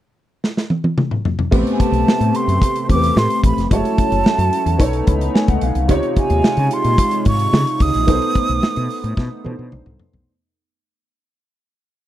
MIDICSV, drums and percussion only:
0, 0, Header, 1, 2, 480
1, 0, Start_track
1, 0, Tempo, 547445
1, 1335, Time_signature, 4, 2, 24, 8
1, 10590, End_track
2, 0, Start_track
2, 0, Title_t, "Drums"
2, 385, Note_on_c, 9, 38, 55
2, 472, Note_off_c, 9, 38, 0
2, 503, Note_on_c, 9, 38, 53
2, 591, Note_off_c, 9, 38, 0
2, 615, Note_on_c, 9, 48, 66
2, 702, Note_off_c, 9, 48, 0
2, 737, Note_on_c, 9, 48, 69
2, 825, Note_off_c, 9, 48, 0
2, 856, Note_on_c, 9, 47, 87
2, 944, Note_off_c, 9, 47, 0
2, 976, Note_on_c, 9, 45, 66
2, 1064, Note_off_c, 9, 45, 0
2, 1098, Note_on_c, 9, 43, 82
2, 1186, Note_off_c, 9, 43, 0
2, 1217, Note_on_c, 9, 43, 87
2, 1304, Note_off_c, 9, 43, 0
2, 1336, Note_on_c, 9, 36, 98
2, 1338, Note_on_c, 9, 49, 81
2, 1424, Note_off_c, 9, 36, 0
2, 1426, Note_off_c, 9, 49, 0
2, 1464, Note_on_c, 9, 42, 41
2, 1552, Note_off_c, 9, 42, 0
2, 1577, Note_on_c, 9, 36, 82
2, 1581, Note_on_c, 9, 42, 56
2, 1665, Note_off_c, 9, 36, 0
2, 1668, Note_off_c, 9, 42, 0
2, 1696, Note_on_c, 9, 42, 44
2, 1783, Note_off_c, 9, 42, 0
2, 1827, Note_on_c, 9, 38, 100
2, 1915, Note_off_c, 9, 38, 0
2, 1938, Note_on_c, 9, 42, 50
2, 2026, Note_off_c, 9, 42, 0
2, 2058, Note_on_c, 9, 42, 65
2, 2145, Note_off_c, 9, 42, 0
2, 2181, Note_on_c, 9, 42, 51
2, 2269, Note_off_c, 9, 42, 0
2, 2294, Note_on_c, 9, 36, 93
2, 2304, Note_on_c, 9, 42, 88
2, 2382, Note_off_c, 9, 36, 0
2, 2391, Note_off_c, 9, 42, 0
2, 2416, Note_on_c, 9, 42, 48
2, 2504, Note_off_c, 9, 42, 0
2, 2538, Note_on_c, 9, 36, 82
2, 2539, Note_on_c, 9, 42, 56
2, 2625, Note_off_c, 9, 36, 0
2, 2626, Note_off_c, 9, 42, 0
2, 2663, Note_on_c, 9, 42, 56
2, 2751, Note_off_c, 9, 42, 0
2, 2780, Note_on_c, 9, 38, 99
2, 2868, Note_off_c, 9, 38, 0
2, 2897, Note_on_c, 9, 42, 49
2, 2985, Note_off_c, 9, 42, 0
2, 3012, Note_on_c, 9, 36, 84
2, 3015, Note_on_c, 9, 42, 69
2, 3100, Note_off_c, 9, 36, 0
2, 3103, Note_off_c, 9, 42, 0
2, 3140, Note_on_c, 9, 42, 43
2, 3149, Note_on_c, 9, 38, 33
2, 3228, Note_off_c, 9, 42, 0
2, 3236, Note_off_c, 9, 38, 0
2, 3254, Note_on_c, 9, 36, 103
2, 3254, Note_on_c, 9, 42, 86
2, 3341, Note_off_c, 9, 36, 0
2, 3342, Note_off_c, 9, 42, 0
2, 3378, Note_on_c, 9, 42, 44
2, 3466, Note_off_c, 9, 42, 0
2, 3492, Note_on_c, 9, 42, 57
2, 3493, Note_on_c, 9, 36, 81
2, 3580, Note_off_c, 9, 36, 0
2, 3580, Note_off_c, 9, 42, 0
2, 3612, Note_on_c, 9, 42, 42
2, 3699, Note_off_c, 9, 42, 0
2, 3736, Note_on_c, 9, 38, 106
2, 3824, Note_off_c, 9, 38, 0
2, 3849, Note_on_c, 9, 42, 50
2, 3937, Note_off_c, 9, 42, 0
2, 3970, Note_on_c, 9, 42, 68
2, 4058, Note_off_c, 9, 42, 0
2, 4090, Note_on_c, 9, 42, 52
2, 4178, Note_off_c, 9, 42, 0
2, 4205, Note_on_c, 9, 36, 90
2, 4210, Note_on_c, 9, 42, 91
2, 4293, Note_off_c, 9, 36, 0
2, 4298, Note_off_c, 9, 42, 0
2, 4324, Note_on_c, 9, 42, 48
2, 4412, Note_off_c, 9, 42, 0
2, 4447, Note_on_c, 9, 42, 64
2, 4450, Note_on_c, 9, 36, 86
2, 4534, Note_off_c, 9, 42, 0
2, 4538, Note_off_c, 9, 36, 0
2, 4571, Note_on_c, 9, 42, 56
2, 4658, Note_off_c, 9, 42, 0
2, 4695, Note_on_c, 9, 38, 99
2, 4782, Note_off_c, 9, 38, 0
2, 4807, Note_on_c, 9, 42, 46
2, 4808, Note_on_c, 9, 36, 76
2, 4894, Note_off_c, 9, 42, 0
2, 4895, Note_off_c, 9, 36, 0
2, 4923, Note_on_c, 9, 42, 71
2, 5011, Note_off_c, 9, 42, 0
2, 5044, Note_on_c, 9, 42, 42
2, 5131, Note_off_c, 9, 42, 0
2, 5163, Note_on_c, 9, 42, 85
2, 5165, Note_on_c, 9, 36, 98
2, 5251, Note_off_c, 9, 42, 0
2, 5253, Note_off_c, 9, 36, 0
2, 5286, Note_on_c, 9, 42, 44
2, 5374, Note_off_c, 9, 42, 0
2, 5405, Note_on_c, 9, 42, 55
2, 5407, Note_on_c, 9, 36, 87
2, 5492, Note_off_c, 9, 42, 0
2, 5494, Note_off_c, 9, 36, 0
2, 5523, Note_on_c, 9, 42, 46
2, 5610, Note_off_c, 9, 42, 0
2, 5649, Note_on_c, 9, 38, 105
2, 5736, Note_off_c, 9, 38, 0
2, 5760, Note_on_c, 9, 42, 50
2, 5847, Note_off_c, 9, 42, 0
2, 5882, Note_on_c, 9, 42, 69
2, 5970, Note_off_c, 9, 42, 0
2, 6002, Note_on_c, 9, 42, 50
2, 6089, Note_off_c, 9, 42, 0
2, 6122, Note_on_c, 9, 36, 90
2, 6125, Note_on_c, 9, 42, 92
2, 6209, Note_off_c, 9, 36, 0
2, 6213, Note_off_c, 9, 42, 0
2, 6236, Note_on_c, 9, 42, 52
2, 6323, Note_off_c, 9, 42, 0
2, 6359, Note_on_c, 9, 42, 61
2, 6365, Note_on_c, 9, 36, 82
2, 6447, Note_off_c, 9, 42, 0
2, 6453, Note_off_c, 9, 36, 0
2, 6483, Note_on_c, 9, 42, 54
2, 6571, Note_off_c, 9, 42, 0
2, 6608, Note_on_c, 9, 38, 112
2, 6695, Note_off_c, 9, 38, 0
2, 6726, Note_on_c, 9, 42, 48
2, 6813, Note_off_c, 9, 42, 0
2, 6840, Note_on_c, 9, 42, 67
2, 6842, Note_on_c, 9, 36, 85
2, 6928, Note_off_c, 9, 42, 0
2, 6930, Note_off_c, 9, 36, 0
2, 6963, Note_on_c, 9, 42, 42
2, 7050, Note_off_c, 9, 42, 0
2, 7082, Note_on_c, 9, 42, 84
2, 7084, Note_on_c, 9, 36, 97
2, 7170, Note_off_c, 9, 42, 0
2, 7172, Note_off_c, 9, 36, 0
2, 7206, Note_on_c, 9, 42, 44
2, 7294, Note_off_c, 9, 42, 0
2, 7322, Note_on_c, 9, 42, 60
2, 7325, Note_on_c, 9, 36, 85
2, 7410, Note_off_c, 9, 42, 0
2, 7413, Note_off_c, 9, 36, 0
2, 7437, Note_on_c, 9, 42, 47
2, 7525, Note_off_c, 9, 42, 0
2, 7568, Note_on_c, 9, 38, 113
2, 7656, Note_off_c, 9, 38, 0
2, 7684, Note_on_c, 9, 42, 48
2, 7771, Note_off_c, 9, 42, 0
2, 7806, Note_on_c, 9, 46, 68
2, 7893, Note_off_c, 9, 46, 0
2, 7929, Note_on_c, 9, 42, 54
2, 8016, Note_off_c, 9, 42, 0
2, 8042, Note_on_c, 9, 36, 95
2, 8049, Note_on_c, 9, 38, 54
2, 8130, Note_off_c, 9, 36, 0
2, 8137, Note_off_c, 9, 38, 0
2, 8282, Note_on_c, 9, 48, 59
2, 8369, Note_off_c, 9, 48, 0
2, 8524, Note_on_c, 9, 47, 83
2, 8611, Note_off_c, 9, 47, 0
2, 8645, Note_on_c, 9, 45, 74
2, 8733, Note_off_c, 9, 45, 0
2, 8764, Note_on_c, 9, 43, 88
2, 8852, Note_off_c, 9, 43, 0
2, 8886, Note_on_c, 9, 43, 87
2, 8974, Note_off_c, 9, 43, 0
2, 10590, End_track
0, 0, End_of_file